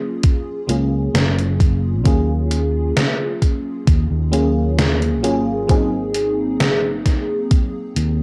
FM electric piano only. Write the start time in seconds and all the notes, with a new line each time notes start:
Already playing: F#3 A#3 C#4 F4 G#4
0.67 F#3 A#3 C#4 F4 G#4
2.04 F#3 A#3 C#4 F4 G#4
4.32 F#3 A#3 C#4 F4 G#4
5.23 F#3 A#3 C#4 F4 G#4
5.67 F#3 A#3 C4 D#4 G#4